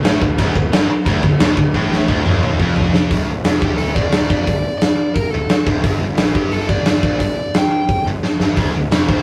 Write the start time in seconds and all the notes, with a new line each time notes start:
0.04 A1 A2, snare, crash
0.21 D1 D2, kick
0.38 D1 D2, kick, crash
0.55 D1 D2, kick
0.72 G1 G2, snare, crash
0.90 muted picked electric bass stroke, muted distorted electric guitar stroke
1.06 D1 D2, kick, crash
1.23 D1 D2, kick
1.39 D#1 D#2, snare, crash
1.56 D1 D2, kick
1.74 A1 A2, kick
1.92 snare
2.08 D1 D2, kick
2.25 D#1 D#2, mid tom
2.43 mid tom
2.59 F1 F2, kick
2.76 floor tom
2.94 snare
3.10 D1 D2, kick, open hi-hat
3.26 D1 D2
3.43 F1 F2, snare, open hi-hat
3.61 D1 D2 G4, kick
3.77 A4, open hi-hat
3.94 D#1 D#2 D5, kick
4.10 D1 D2, snare, open hi-hat
4.30 F1 F2, kick
4.42 D5
4.47 D1 D2, kick, open hi-hat
4.78 D5, snare, open hi-hat
5.14 A#4, kick, open hi-hat
5.30 D1 A4
5.34 D2
5.48 muted picked electric bass stroke, muted distorted electric guitar stroke, snare, open hi-hat
5.66 D1 D2, kick
5.83 G1 G2, kick, open hi-hat
5.99 G1 G2
6.17 A#1 A#2, snare, open hi-hat
6.35 G1 G2 G4, kick
6.52 A4, open hi-hat
6.69 G#1 G#2 D5, kick
6.86 G1 G2, snare, open hi-hat
7.02 A#1 A#2, kick
7.20 G1 G2 D5, kick, open hi-hat
7.54 G5, snare, open hi-hat
7.89 kick, open hi-hat
8.05 G1 G2
8.22 muted picked electric bass stroke, muted distorted electric guitar stroke, snare
8.38 G1 G2, snare
8.56 D1 D2, kick, open hi-hat
8.73 D1 D2
8.90 F1 F2, snare, open hi-hat
9.08 D1 D2 C5, kick